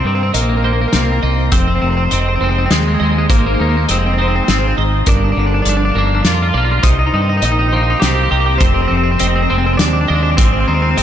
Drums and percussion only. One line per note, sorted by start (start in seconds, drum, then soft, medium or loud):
0.34 closed hi-hat medium
0.93 snare medium
0.93 closed hi-hat soft
1.52 kick medium
1.52 closed hi-hat medium
2.11 closed hi-hat soft
2.71 snare medium
2.71 closed hi-hat soft
3.30 kick medium
3.30 closed hi-hat soft
3.89 closed hi-hat soft
4.48 snare medium
4.48 closed hi-hat medium
5.06 kick medium
5.06 closed hi-hat soft
5.65 closed hi-hat soft
6.25 snare medium
6.25 closed hi-hat medium
6.83 kick medium
6.83 closed hi-hat medium
7.42 closed hi-hat soft
8.02 snare medium
8.02 closed hi-hat soft
8.60 kick medium
8.60 closed hi-hat soft
9.19 closed hi-hat soft
9.79 snare medium
9.79 closed hi-hat medium
10.38 kick medium
10.38 closed hi-hat medium
10.98 closed hi-hat medium